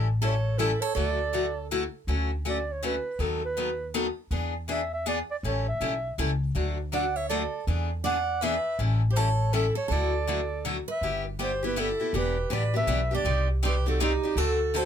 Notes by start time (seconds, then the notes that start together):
Already playing: A1
0.22 E3 G3 C#4 E4 A4 C#5
0.58 E3 G3 C#4 E4 A4
0.81 A4 C#5
0.95 D2 D3 F#3 A3 E4 F#4 A4 D5
1.33 D3 F#3 A3 E4 F#4
1.71 D3 F#3 A3 E4 F#4
2.07 D2 D3 F#3 A3 C#4 F#4
2.45 D3 F#3 A3 C#4 F#4 D5
2.72 C#5
2.83 D3 F#3 A3 C#4 F#4 B4
3.19 D#2 D#3 F#3 B3 D#4 A4
3.45 B4
3.57 D#3 F#3 B3 D#4 A4
3.94 D#3 F#3 B3 D#4 A4
4.31 E2 E3 B3 D4 G#4
4.68 E3 B3 D4 G#4 E5
4.93 E5
5.06 E3 B3 D4 G#4 D5
5.31 D5
5.43 A1 E3 G3 C#4 E4 A4 C#5
5.68 E5
5.80 B1 E3 G3 C#4 E4 A4
6.18 C#2 E3 G3 C#4 E4 A4
6.55 D2 D3 F#3 A3 D4 F#4
6.92 D3 F#3 A3 D4 F#4 D5 F#5
7.16 C#5 E5
7.29 D3 F#3 A3 D4 F#4 A4 D5
7.67 E2 E3 B3 D4 G#4
8.04 E3 B3 D4 G#4 D5 F#5
8.41 E3 B3 D4 G#4 B4 E5
8.79 A1 E3 G3 C#4 E4 A4
9.10 G4 C5
9.16 E3 G3 C#4 E4 A4 C#5
9.53 E3 G3 C#4 E4 A4
9.75 A4 C#5
9.88 D2 D3 F#3 A3 E4 F#4 A4 D5
10.27 D3 F#3 A3 E4 F#4
10.65 D3 F#3 A3 E4 F#4
10.88 B4 E5
11.01 G1 G3 B3 E4 G4
11.39 G3 B3 E4 G4 C5
11.63 B3 E4 G4 B4
11.76 G3 B3 E4 G4 A4
12.00 B3 E4 G4
12.13 E1 E3 B3 D4 G4
12.17 B4
12.50 A1 E3 B3 D4 G4 B4 D5
12.74 B3 D4 G4 B4 E5
12.87 B1 E3 B3 D4 G4
13.11 B3 D4 G4
13.15 D5
13.25 C2 C3 G3 C4 D#4 G4 D5
13.63 C3 G3 C4 D#4 G4 B4 D5
13.86 C4 D#4 F#4 G4 A4 D5
14.00 C3 G3 C4 D#4 G4 D5
14.23 C4 D#4 G4 D5
14.36 D2 D3 A3 C4 F#4 A4
14.40 A4
14.74 D3 A3 C4 F#4 A4 C5